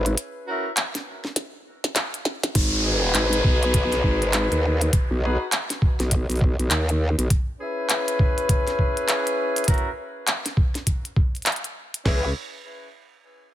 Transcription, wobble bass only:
Already playing: G#1
2.55 G#1
3.14 G#1
3.44 B1
4.04 G#1
4.51 D#2
5.11 B1
6.00 B1
6.29 B1
6.59 B1
6.70 D#2
7.18 B1
12.05 C#2

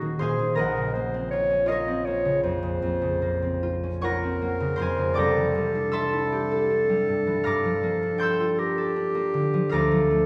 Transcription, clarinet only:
Already playing: F#4
0.19 G#4
0.57 A#4
0.93 C5
1.31 C#5
1.68 D#5
2.05 C#5
2.44 C5
4.03 A#4
5.18 A4
8.59 G4
9.72 A4

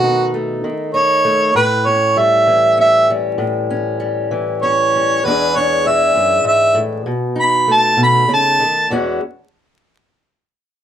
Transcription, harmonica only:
Already playing: F#4
0.94 C#5
1.56 B4
1.86 C#5
2.18 E5
2.81 E5
4.62 C#5
5.25 B4
5.56 C#5
5.87 E5
6.47 E5
7.40 B5
7.73 A5
8.03 B5
8.34 A5

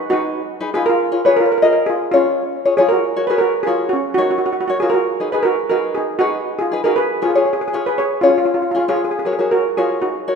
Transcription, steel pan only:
Already playing: D#4
0.10 D#4 F#4
0.74 F4 G#4
0.86 F4 A#4
1.25 G#4 B4
1.37 F4 A#4
1.46 A#4
1.52 A#4
1.58 A#4
1.64 A#4
1.73 A#4
1.86 F4 G#4
2.12 C#4 F4
2.77 F4 G#4
2.89 F#4 A#4
3.27 G#4 B4
3.38 F#4 A#4
3.63 F4 G#4
3.89 C#4 F#4
4.14 D#4 F#4
4.22 F#4
4.31 F#4
4.38 F#4
4.46 F#4
4.53 F#4
4.61 F#4
4.68 F#4
4.80 F4 G#4
4.90 A#4
4.94 F#4
5.32 G#4 B4
5.43 F#4 A#4
5.69 F#4 A#4
5.95 D#4 G#4
6.19 D#4 F#4
6.59 F4 G#4
6.84 F#4 A#4
6.96 G#4 B4
7.23 F4 G#4
7.30 G#4
7.38 G#4
7.45 G#4
7.53 G#4
7.61 G#4
7.68 G#4
7.76 G#4
7.86 G#4 B4
7.98 G#4 C#5
8.21 C#4 F4
8.30 F4
8.38 F4
8.45 F4
8.54 F4
8.62 F4
8.71 F4
8.79 F4
8.89 F4 G#4
8.96 G#4
9.04 G#4
9.11 G#4
9.19 G#4
9.25 G#4
9.33 G#4
9.40 G#4
9.51 F#4 A#4
9.77 F4 G#4
10.01 D#4 F#4

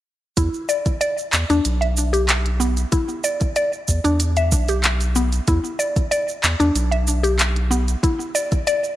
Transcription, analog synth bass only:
0.37 E2
1.33 E2
1.50 E2
1.66 B1
3.88 E2
4.05 E2
4.52 B1
5.48 E2
6.44 E2
6.60 E2
6.75 B1

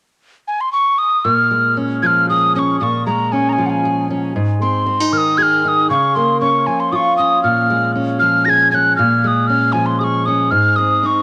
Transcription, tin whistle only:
0.48 G#5
0.61 C6
0.72 C#6
0.98 D#6
1.25 F6
2.02 G#6
2.06 F6
2.29 D#6
2.55 C#6 D#6
2.80 C#6 D#6
3.06 A#5
3.32 G#5
3.49 G#5 A#5
3.66 F#5 G#5
4.62 C6
5.13 F6
5.18 D#6
5.38 G#6
5.43 F6
5.65 D#6 F6
5.90 C#6
6.15 C6
6.41 C#6
6.67 G#5
6.80 C6
6.92 C#6 D#6
7.17 D#6
7.43 F6
8.19 F6
8.45 A#6
8.50 G#6
8.71 F#6 G#6
8.96 F6
9.22 F6
9.27 D#6
9.47 F6
9.72 G#5
9.86 C6
9.99 D#6
10.04 C#6
10.26 D#6
10.51 F6
10.76 D#6
11.02 D#6
11.06 C#6

